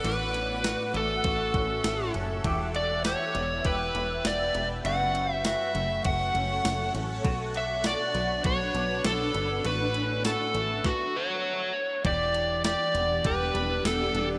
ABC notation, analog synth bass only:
X:1
M:4/4
L:1/16
Q:1/4=100
K:Edor
V:1 name="Analog synth bass" clef=bass
A,,,4- A,,, z A,,,2 A,,,2 A,,,2 A,,,2 F,,,2 | E,,,4- E,,, z E,,,2 E,,,2 E,,,2 E,,,2 E,,,2 | F,,,4- F,,, z F,,,2 F,,,2 F,,,2 F,,,2 A,,,2 | B,,,4- B,,, z B,,,2 B,,,2 B,,,2 B,,,2 G,,,2 |
A,,,4- A,,, z A,,,2 z8 | E,,,4- E,,, z E,,,2 E,,,2 E,,,2 E,,,2 E,,,2 |]